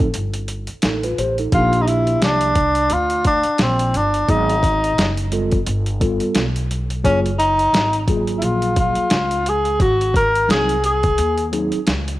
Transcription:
Already playing: upright bass A1
0.00 kick
0.14 upright bass G1, closed hi-hat
0.34 closed hi-hat
0.48 closed hi-hat
0.67 muted upright bass stroke, closed hi-hat
0.82 upright bass A1, tine electric piano D#4 A4, snare, closed hi-hat
1.03 tine electric piano F4 B4, closed hi-hat
1.18 upright bass A1, tine electric piano G4 C5, closed hi-hat
1.38 tine electric piano D#4 A4, closed hi-hat
1.52 upright bass A#1, tine electric piano F3 A#3 D4 G4, tenor saxophone F4, kick, closed hi-hat
1.73 closed hi-hat
1.82 tenor saxophone D#4
1.87 tenor saxophone E4, closed hi-hat
2.07 closed hi-hat
2.22 upright bass C2, tenor saxophone D4, snare, closed hi-hat
2.41 closed hi-hat
2.55 kick, closed hi-hat
2.75 closed hi-hat
2.90 upright bass D2, tenor saxophone F4, closed hi-hat
3.10 closed hi-hat
3.24 tenor saxophone D4, kick, closed hi-hat
3.43 muted upright bass stroke, closed hi-hat
3.58 upright bass A#1, tenor saxophone C4, snare, closed hi-hat
3.79 closed hi-hat
3.94 upright bass G1, tenor saxophone D4, closed hi-hat
4.14 closed hi-hat
4.28 upright bass G#1, tine electric piano F#3 B3 D#4 G#4, tenor saxophone D#4, kick, closed hi-hat
4.49 closed hi-hat
4.63 kick, closed hi-hat
4.84 closed hi-hat
4.98 upright bass F#1, snare, closed hi-hat
5.17 closed hi-hat
5.32 tine electric piano G3 B3 F4 A4, closed hi-hat
5.52 kick, closed hi-hat
5.67 upright bass G1, closed hi-hat
5.86 closed hi-hat
6.00 tine electric piano G3 B3 F4 A4, kick, closed hi-hat
6.20 muted upright bass stroke, closed hi-hat
6.35 upright bass B1, snare, closed hi-hat
6.56 closed hi-hat
6.71 closed hi-hat
6.90 closed hi-hat
7.04 upright bass F#1, tine electric piano F#3 A#3 F4 G#4, tenor saxophone C#4, kick, closed hi-hat
7.26 closed hi-hat
7.39 tenor saxophone D#4, closed hi-hat
7.59 closed hi-hat
7.73 upright bass G#1, snare, closed hi-hat
7.93 closed hi-hat
8.08 tine electric piano F#3 A#3 F4 G#4, kick, closed hi-hat
8.27 closed hi-hat
8.38 tenor saxophone E4
8.42 upright bass A#1, tenor saxophone F4, closed hi-hat
8.62 closed hi-hat
8.76 tenor saxophone F4, kick, closed hi-hat
8.95 muted upright bass stroke, closed hi-hat
9.10 upright bass C#2, snare, closed hi-hat
9.31 closed hi-hat
9.46 tenor saxophone G#4, closed hi-hat
9.65 closed hi-hat
9.80 upright bass G#1, tenor saxophone F#4, kick, closed hi-hat
10.01 closed hi-hat
10.14 tenor saxophone A#4, kick, closed hi-hat
10.35 closed hi-hat
10.48 upright bass C2, tine electric piano F#3 C4 D#4 G#4, tenor saxophone G#4, snare, closed hi-hat
10.69 closed hi-hat
10.84 tenor saxophone G#4, closed hi-hat
11.03 kick, closed hi-hat
11.18 upright bass D#2, closed hi-hat
11.38 closed hi-hat
11.52 tine electric piano F#3 C4 D#4 G#4, closed hi-hat
11.72 muted upright bass stroke, closed hi-hat
11.87 upright bass C#2, snare, closed hi-hat
12.08 closed hi-hat

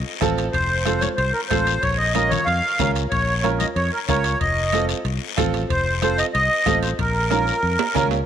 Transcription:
0.21 fingered electric bass A1, upright piano C4 F4 A4 A5, bombo low, bombo rim, high conga, low conga, high timbale, short guiro
0.38 high timbale, short guiro
0.52 fingered electric bass F1, accordion C5, bombo low, high timbale, long guiro
0.85 upright piano C4 F4 A4, accordion C5, bombo rim, high conga, high timbale, short guiro
1.01 accordion C#5, high conga, high timbale, short guiro
1.17 fingered electric bass C2, accordion C5, high timbale, long guiro
1.33 accordion A#4
1.48 fingered electric bass A1, upright piano C4 F4 A4, accordion C5, bombo low, bombo rim, high conga, high timbale, short guiro
1.67 high timbale, short guiro
1.82 fingered electric bass A#1, accordion C#5, bombo low, high timbale, long guiro
1.97 accordion D#5
2.14 upright piano C#4 F4 A#4, accordion D#5, bombo rim, high conga, high timbale, short guiro
2.29 accordion C#5, high conga, low conga, high timbale, short guiro
2.45 fingered electric bass F2, accordion F5, high timbale, long guiro
2.79 fingered electric bass C#2, upright piano C#4 F4 A#4, bombo low, bombo rim, high conga, low conga, high timbale, low timbale, short guiro
2.95 high timbale, short guiro
3.10 fingered electric bass A#1, accordion C#5, bombo low, high timbale, long guiro
3.42 upright piano C#4 F4 A#4, accordion C#5, bombo rim, high conga, high timbale, short guiro
3.59 accordion D#5, high conga, high timbale, short guiro
3.76 fingered electric bass F2, accordion C#5, high timbale, long guiro
3.92 accordion A#4
4.08 fingered electric bass C#2, upright piano C#4 F4 A#4, accordion C#5, bombo low, bombo rim, high conga, high timbale, short guiro
4.24 high timbale, short guiro
4.40 fingered electric bass F1, accordion D#5, bombo low, high timbale, long guiro
4.72 upright piano C4 F4 A4, bombo rim, high conga, high timbale, short guiro
4.89 high timbale, short guiro
5.05 fingered electric bass C2, high timbale, long guiro
5.37 fingered electric bass A1, upright piano C4 F4 A4, bombo low, bombo rim, high conga, low conga, high timbale, short guiro
5.54 high timbale, short guiro
5.69 fingered electric bass F1, accordion C5, bombo low, high timbale, long guiro
6.02 upright piano C4 F4 A4, accordion C5, bombo rim, high conga, high timbale, short guiro
6.18 accordion D#5, high timbale, short guiro
6.33 fingered electric bass C2, accordion D#5, high timbale, long guiro
6.66 fingered electric bass A1, upright piano C4 F4 A4, bombo low, bombo rim, high conga, high timbale, low timbale, short guiro
6.82 accordion C5, high timbale, short guiro
6.99 fingered electric bass A#1, accordion A#4, bombo low, high timbale, long guiro
7.30 upright piano C#4 F4 A#4, bombo rim, high conga, high timbale, short guiro
7.47 short guiro
7.63 fingered electric bass F2, long guiro
7.79 low timbale
7.94 fingered electric bass C#2, upright piano C#4 F4 A#4, bombo low, bombo rim, high conga, low conga, low timbale, short guiro
8.11 low timbale, short guiro

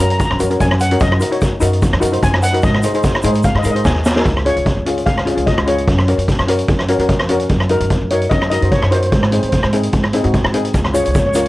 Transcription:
0.00 upright bass F#2, steel pan C#4 F#4 A#4 A#5
0.10 steel pan A#5, closed hi-hat
0.18 steel pan A#5, kick, closed hi-hat, shaker
0.26 steel pan A#5
0.30 upright bass F#2, cross-stick
0.39 upright bass F#2, steel pan C#4 F#4 A#4, closed hi-hat, shaker
0.50 steel pan C#4 F#4 A#4, closed hi-hat
0.60 upright bass F#2, steel pan G#5, kick, closed hi-hat, shaker
0.71 cross-stick
0.80 steel pan F#5, closed hi-hat, shaker
0.91 steel pan C#4 F#4 A#4, closed hi-hat, shaker
1.00 upright bass F#2, steel pan D#5, kick, closed hi-hat, shaker
1.12 cross-stick
1.20 steel pan D#4 F#4 A#4, closed hi-hat, shaker
1.31 steel pan D#4 F#4 C#5, closed hi-hat
1.41 kick, closed hi-hat, shaker
1.60 upright bass F#2, steel pan D#4 F#4 A#4, closed hi-hat, shaker
1.73 closed hi-hat
1.82 kick, closed hi-hat, shaker
1.93 upright bass F#2, cross-stick
2.00 upright bass F#2, steel pan D#4 F#4 A#4, closed hi-hat, shaker
2.12 steel pan D#4 F#4 C5, closed hi-hat
2.23 upright bass F#2, steel pan G#5, kick, closed hi-hat, shaker
2.34 cross-stick
2.43 steel pan F#5, closed hi-hat, shaker
2.53 steel pan D#4 F#4 A#4, closed hi-hat
2.62 upright bass G#2, steel pan D#5, kick, closed hi-hat, shaker
2.74 cross-stick
2.83 steel pan D#4 G#4 C5, closed hi-hat, shaker
2.94 steel pan D#4 G#4 C5, closed hi-hat, shaker
3.03 kick, closed hi-hat, shaker
3.15 cross-stick
3.22 upright bass G#2, steel pan D#4 G#4 C5, closed hi-hat, shaker
3.33 closed hi-hat, shaker
3.43 steel pan F5, kick, closed hi-hat, shaker
3.55 upright bass G#2, steel pan D#5, cross-stick
3.63 upright bass G#2, steel pan D#4 G#4 A#4, closed hi-hat, shaker
3.71 steel pan D#4 D#5
3.76 steel pan G#4 C5, closed hi-hat
3.84 upright bass D#2, steel pan G#5, kick, snare, shaker
4.05 snare, shaker
4.15 steel pan D#4 G#4 A#4, snare
4.25 upright bass C#2, kick, closed hi-hat
4.37 cross-stick
4.45 steel pan C#4 F4 G#4 C#5, closed hi-hat
4.56 upright bass C#2, closed hi-hat
4.66 kick, closed hi-hat
4.77 upright bass C#2
4.86 steel pan C#4 F4 G#4, closed hi-hat
4.98 closed hi-hat
5.06 upright bass C#2, steel pan F5, kick, closed hi-hat
5.17 cross-stick
5.25 steel pan C#4 F4 G#4, closed hi-hat
5.35 upright bass C#2, steel pan C#4 F4 G#4, closed hi-hat
5.46 steel pan D#5, kick, closed hi-hat
5.57 upright bass C#2, cross-stick
5.66 steel pan C#4 F4 G#4 C#5, closed hi-hat
5.78 closed hi-hat
5.88 upright bass F#2, kick, closed hi-hat
5.98 cross-stick
6.08 steel pan C#4 F#4 A#4, closed hi-hat
6.19 closed hi-hat
6.28 kick, closed hi-hat
6.39 upright bass F#2, cross-stick
6.47 steel pan C#4 F#4 A#4, closed hi-hat
6.59 closed hi-hat
6.68 upright bass F#2, kick, closed hi-hat
6.79 cross-stick
6.88 steel pan C#4 F#4 A#4, closed hi-hat
6.99 upright bass F#2, steel pan C#4 F#4 A#4, closed hi-hat
7.09 kick, closed hi-hat
7.19 upright bass F2, cross-stick
7.29 steel pan C#4 F#4 A#4, closed hi-hat
7.40 closed hi-hat
7.49 upright bass F#2, kick, closed hi-hat
7.60 cross-stick
7.69 steel pan D#4 F#4 A#4, closed hi-hat
7.80 upright bass F#2, closed hi-hat
7.90 kick, closed hi-hat
8.01 upright bass F#2
8.10 steel pan D#4 F#4 A#4 C#5, closed hi-hat
8.22 closed hi-hat
8.30 upright bass F#2, steel pan D#5, kick, closed hi-hat
8.42 cross-stick
8.50 steel pan D#4 F#4 A#4 D#5, closed hi-hat
8.61 upright bass F#2, steel pan D#4 F#4 C5, closed hi-hat
8.72 steel pan C#5, kick, closed hi-hat
8.82 upright bass F#2, cross-stick
8.91 steel pan D#4 F#4 A#4 C5, closed hi-hat
8.99 steel pan C5, closed hi-hat
9.07 steel pan C5
9.12 upright bass G#2, steel pan C5, kick, closed hi-hat
9.21 steel pan C5, cross-stick
9.27 steel pan C5
9.32 steel pan C4 D#4 G#4 C5, closed hi-hat
9.42 upright bass G#2, steel pan C5, closed hi-hat
9.49 steel pan C5, kick, closed hi-hat
9.56 steel pan C5
9.63 upright bass G#2, cross-stick
9.73 steel pan C4 D#4 G#4, closed hi-hat
9.83 closed hi-hat
9.93 upright bass G#2, kick, closed hi-hat
10.04 cross-stick
10.13 steel pan C4 D#4 G#4, closed hi-hat
10.23 upright bass G#2, steel pan C4 D#4 F#4, closed hi-hat
10.34 kick, closed hi-hat
10.44 upright bass G#2, cross-stick
10.54 steel pan C4 D#4 G#4, closed hi-hat
10.65 closed hi-hat
10.74 upright bass C#2, kick, closed hi-hat, shaker
10.84 cross-stick
10.93 steel pan C#4 F4 G#4 C#5, closed hi-hat, shaker
11.04 upright bass C#2, steel pan C#5, closed hi-hat, shaker
11.11 steel pan C#5, kick, closed hi-hat, shaker
11.19 steel pan C#5
11.26 upright bass C#2, steel pan C#5
11.34 steel pan C#4 F4 A#4 C#5, closed hi-hat, shaker
11.41 steel pan C#5

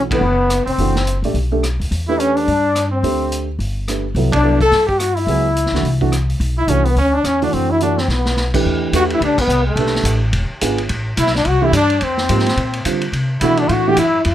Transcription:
Already playing: upright bass B1
0.11 upright piano E3 A3 D4 A4, trumpet B3, trombone B3, kick, ride
0.21 upright bass F#1
0.50 cross-stick, closed hi-hat
0.66 upright bass F1, trumpet C4, trombone C4, open hi-hat
0.78 upright bass F#1, upright piano E3 A3 D4 F#4, open hi-hat
0.96 snare
1.07 closed hi-hat
1.22 upright bass A1, upright piano A3 D4 G4 D5, open hi-hat
1.34 upright bass B1, open hi-hat
1.52 upright piano A3 D4 G4 A4
1.63 cross-stick, closed hi-hat
1.80 upright bass D#2, open hi-hat
1.91 upright bass E2, open hi-hat
2.08 upright piano A3 D4 G4 B4, trumpet E4, trombone E4
2.19 trumpet C#4, trombone C#4, closed hi-hat
2.36 trumpet D4, trombone D4, open hi-hat
2.48 upright bass G2, open hi-hat
2.75 cross-stick, closed hi-hat
2.91 trumpet C4, trombone C4
3.03 upright bass D2, upright piano A3 D4 G4 C5, open hi-hat
3.32 closed hi-hat
3.59 upright bass G1, open hi-hat
3.88 upright piano A3 D4 G4 B4, cross-stick, closed hi-hat
4.15 upright bass C2, upright piano F#3 B3 E4 A4, open hi-hat
4.32 trumpet D4, trombone D4, kick, ride
4.43 upright piano F#3 B3 E4 A4
4.61 trumpet A4, trombone A4, kick, open hi-hat
4.71 upright bass G2, snare, open hi-hat
4.87 trumpet G4, trombone G4, kick
4.98 trumpet F#4, trombone F#4, cross-stick, closed hi-hat
5.15 trumpet E4, trombone E4, open hi-hat
5.27 upright bass C#2, upright piano F#3 B3 E4 G#4, open hi-hat
5.56 closed hi-hat
5.66 snare
5.72 upright bass C#2, upright piano E3 A3 D4 F#4, snare
5.83 upright bass C2, open hi-hat
6.01 upright piano E3 A3 D4 F#4, kick
6.12 cross-stick, closed hi-hat
6.30 open hi-hat
6.40 upright bass B1, open hi-hat
6.58 trumpet E4, trombone E4
6.68 upright bass C2, upright piano E3 A3 D4 F#4, trumpet C#4, closed hi-hat
6.72 trombone C#4
6.85 trumpet B3, trombone B3, open hi-hat
6.96 upright bass D2, trumpet C#4, open hi-hat
7.00 trombone C#4
7.14 trumpet D4
7.18 trombone D4
7.24 upright bass E2, trumpet C#4, trombone C#4, cross-stick, closed hi-hat
7.42 upright piano E3 A3 D4 F#4, trumpet D4, trombone D4, open hi-hat
7.53 upright bass F#2, trumpet C4, trombone C4, open hi-hat
7.71 trumpet E4, trombone E4
7.80 upright piano E3 A3 D4 F#4, trumpet D4, trombone D4, closed hi-hat
7.98 trumpet C4, trombone C4, snare
8.08 upright bass B1, trumpet B3, trombone B3, snare
8.25 snare
8.36 snare
8.54 upright piano E3 A3 D4 G4 B4, kick, crash
8.65 upright bass E2
8.93 upright bass E2, upright piano A3 D4 G4 B4, trumpet F#4, hi-hat pedal, ride
8.98 trombone F#4
9.10 trumpet E4, ride
9.15 trombone E4
9.20 upright bass D2, trumpet D4, trombone D4, ride
9.38 trumpet B3, trombone B3, muted upright bass stroke, kick, crash
9.48 upright bass C2, hi-hat pedal
9.67 trumpet A3, trombone A3
9.76 upright bass B1, upright piano A3 D4 G4 B4, ride
9.86 snare
9.95 snare
10.04 upright bass A1, hi-hat pedal, ride
10.33 upright bass E1, ride
10.50 muted upright bass stroke
10.61 upright bass G#1, upright piano B3 D4 F4 G#4, hi-hat pedal, ride
10.78 ride
10.89 upright bass A1, ride
11.17 upright bass B1, trombone E4, trumpet E4, hi-hat pedal, ride
11.26 snare
11.35 trombone D4, trumpet D4, snare
11.45 upright bass C2, trombone F#4, trumpet F#4, ride
11.62 upright piano E3 A3 D4 G4, trombone E4, trumpet E4
11.72 upright bass G2, trombone D4, hi-hat pedal, ride
11.77 trumpet D4
11.90 ride
12.01 upright bass F2, trombone C4, trumpet C4, ride
12.17 snare
12.29 upright bass G#2, upright piano F3 A#3 D#4 G4, hi-hat pedal, ride
12.39 snare
12.46 snare, ride
12.57 upright bass A#2, ride
12.73 ride
12.85 upright bass D3, upright piano D3 G3 C4 F4, hi-hat pedal, ride
13.01 ride
13.12 upright bass C3, ride
13.41 upright bass B2, upright piano E3 A3 D4 F#4, trumpet E4, trombone E4, hi-hat pedal, ride
13.57 trumpet D4, trombone D4, ride
13.68 upright bass A2, trombone F4 F#4, trumpet F4 F#4, ride
13.87 upright piano E3 A3 D4 F#4, trombone G4, trumpet G4
13.96 upright bass F#2, trombone E4, trumpet E4, hi-hat pedal, ride
14.25 upright bass F2, trumpet F4, trombone F4, ride

